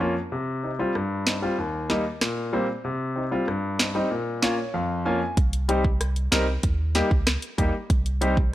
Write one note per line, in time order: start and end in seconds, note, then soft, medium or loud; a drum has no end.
0.00 0.16 F2 medium
0.00 0.13 A#3 medium
0.00 0.13 C#4 medium
0.00 0.13 F4 medium
0.32 0.79 C3 medium
0.63 0.70 C4 soft
0.63 0.70 D#4 medium
0.79 0.92 G3 medium
0.79 0.92 C4 medium
0.79 0.92 F4 medium
0.95 1.42 G2 medium
0.95 cross-stick medium
1.26 1.33 C4 soft
1.26 1.33 D#4 medium
1.26 snare loud
1.42 1.55 G3 medium
1.42 1.55 C4 medium
1.42 1.55 F4 medium
1.58 2.05 D#2 medium
1.90 2.02 G3 medium
1.90 2.02 A#3 medium
1.90 2.03 D#4 medium
1.90 snare medium
2.21 2.68 A#2 medium
2.21 cross-stick medium
2.21 snare loud
2.53 2.66 G3 medium
2.53 2.66 A#3 medium
2.53 2.66 C4 medium
2.85 3.32 C3 medium
3.16 3.22 C4 soft
3.16 3.23 D#4 medium
3.31 3.44 G3 medium
3.31 3.44 C4 medium
3.31 3.45 F4 medium
3.48 3.95 G2 medium
3.48 cross-stick medium
3.79 3.85 C4 soft
3.79 3.86 D#4 medium
3.79 snare loud
3.95 4.08 G3 medium
3.95 4.08 C4 medium
3.95 4.08 D#4 medium
4.11 4.58 A#2 medium
4.42 4.55 A#3 medium
4.42 4.55 C#4 medium
4.42 4.55 F4 medium
4.42 4.72 C#5 medium
4.42 snare loud
4.74 5.21 F2 medium
4.74 5.03 F5 medium
5.05 5.18 A#3 medium
5.05 5.18 C#4 medium
5.05 5.18 F4 medium
5.05 5.35 G#5 medium
5.37 6.28 C2 loud
5.37 kick loud
5.37 closed hi-hat medium
5.53 closed hi-hat medium
5.68 5.81 G3 medium
5.68 5.81 C4 medium
5.68 5.81 D#4 medium
5.68 5.82 G4 loud
5.68 closed hi-hat medium
5.85 kick loud
6.01 cross-stick medium
6.01 closed hi-hat medium
6.16 closed hi-hat soft
6.32 6.58 C2 medium
6.32 6.44 G3 medium
6.32 6.44 C4 medium
6.32 6.45 D#4 medium
6.32 6.45 A#4 loud
6.32 snare loud
6.32 closed hi-hat medium
6.63 7.02 D#2 loud
6.63 kick loud
6.63 closed hi-hat medium
6.95 7.08 G3 medium
6.95 7.08 A#3 medium
6.95 7.08 D#4 medium
6.95 7.08 G4 loud
6.95 snare medium
6.95 closed hi-hat medium
7.11 7.37 C#2 medium
7.11 kick medium
7.27 cross-stick medium
7.27 snare loud
7.27 closed hi-hat medium
7.42 closed hi-hat medium
7.58 7.71 D#2 medium
7.58 7.71 G3 medium
7.58 7.71 A#3 medium
7.58 7.71 D#4 medium
7.58 7.71 G4 loud
7.58 kick medium
7.58 closed hi-hat medium
7.90 8.54 C2 loud
7.90 kick loud
7.90 closed hi-hat medium
8.06 closed hi-hat medium
8.21 8.34 G3 medium
8.21 8.34 C4 medium
8.21 8.34 D#4 medium
8.21 8.34 G4 loud
8.21 closed hi-hat medium
8.37 kick loud